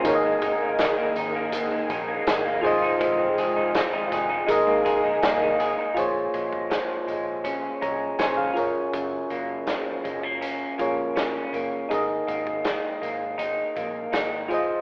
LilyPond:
<<
  \new Staff \with { instrumentName = "Synth keys" } { \time 4/4 \key aes \mixolydian \tempo 4 = 81 << { r1 | r1 | r2 r8 <des'' bes''>8 <c'' aes''>16 <aes' f''>8 r16 | r1 |
r1 | } \\ { <ees' aes' bes' des'' ees''>2.~ <ees' aes' bes' des'' ees''>8 <f' aes' c'' ees''>8~ | <f' aes' c'' ees''>2 <ees' aes' bes' ees''>2 | <f' aes' c'' des''>2.~ <f' aes' c'' des''>8 <f' aes' bes' des''>8~ | <f' aes' bes' des''>2~ <f' aes' bes' des''>8 <f' aes' bes' des''>4. |
<ees' aes' bes' ees''>2.~ <ees' aes' bes' ees''>8 <f' aes' c'' ees''>8 | } >> }
  \new Staff \with { instrumentName = "Clean electric guitar" } { \time 4/4 \key aes \mixolydian aes,16 ees16 ees'16 bes16 ees16 bes16 ees'16 bes16 aes,16 ees16 ees'16 bes16 ees16 bes16 f16 ees'16 | f16 c'16 aes'16 ees'16 c'16 ees'16 aes'16 ees'16 aes16 bes16 aes'16 ees'16 bes16 ees'16 aes'16 ees'16 | bes,8 aes8 f8 aes8 des'8 aes8 des'8 ges,8 | ges,8 bes8 f8 aes16 bes16 des'8 bes8 des'8 bes8 |
aes,8 bes8 ees8 bes8 ees'8 bes8 ees'8 f8 | }
  \new Staff \with { instrumentName = "String machine" } { \time 4/4 \key aes \mixolydian << { <bes aes'>2.~ <bes aes'>8 <aes f'>8~ | <aes f'>2 <bes aes'>2 | r1 | r1 |
r1 | } \\ { ees1~ | ees1 | r1 | r1 |
r1 | } >> }
  \new Staff \with { instrumentName = "Fingered electric bass" } { \clef bass \time 4/4 \key aes \mixolydian aes,,8 aes,,8. r16 aes,,4 bes,,8 aes,,8 f,,8 | f,,8 f,,8. r16 f,,8 aes,,16 aes,16 aes,,16 bes,,16 c,8 aes,,16 r16 | bes,,8 bes,,8. r16 bes,,4 c,8 bes,,8 ges,,8 | ges,,8 ges,,8. r16 ges,,4 bes,,4 ges,,8 |
aes,,8 aes,,8. r16 aes,,4 bes,,8 aes,,8 f,,8 | }
  \new DrumStaff \with { instrumentName = "Drums" } \drummode { \time 4/4 <hh bd>8 <hh bd>8 <hh sn>8 hh8 <hh bd>8 <hh bd>8 <hh sn>8 hho8 | <hh bd>8 hh8 <hh sn>8 <hh bd sn>8 <hh bd>8 <hh bd>8 <hh sn>8 hh8 | <hh bd>8 <hh bd>16 bd16 <hh sn>8 hh8 <hh bd>8 <hh bd>8 <hh sn>8 hh8 | <hh bd>8 hh8 <hh sn>8 <hh bd>8 hh8 <hh bd>8 <hh sn>8 hh8 |
<hh bd>8 <hh bd>16 bd16 <hh sn>8 hh8 <hh bd>8 <hh bd>8 <hh sn>8 hh8 | }
>>